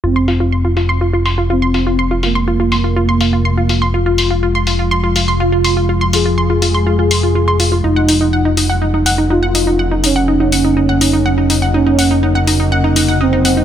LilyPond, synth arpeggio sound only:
\new Staff \with { instrumentName = "Synth arpeggio sound" } { \time 4/4 \key f \phrygian \tempo 4 = 123 f'16 c'''16 f'16 f'16 c'''16 f'16 f'16 c'''16 f'16 f'16 c'''16 f'16 f'16 c'''16 f'16 f'16 | c'''16 f'16 f'16 c'''16 f'16 f'16 c'''16 f'16 f'16 c'''16 f'16 f'16 c'''16 f'16 f'16 c'''16 | f'16 f'16 c'''16 f'16 f'16 c'''16 f'16 f'16 c'''16 f'16 f'16 c'''16 f'16 f'16 c'''16 f'16 | f'16 c'''16 f'16 f'16 c'''16 f'16 f'16 c'''16 f'16 f'16 c'''16 f'16 f'16 c'''16 f'16 f'16 |
ees'16 ges''16 ees'16 ees'16 ges''16 ees'16 ees'16 ges''16 ees'16 ees'16 ges''16 ees'16 ees'16 ges''16 ees'16 ees'16 | ges''16 ees'16 ees'16 ges''16 ees'16 ees'16 ges''16 ees'16 ees'16 ges''16 ees'16 ees'16 ges''16 ees'16 ees'16 ges''16 | ees'16 ees'16 ges''16 ees'16 ees'16 ges''16 ees'16 ees'16 ges''16 ees'16 ees'16 ges''16 ees'16 ees'16 ges''16 ees'16 | }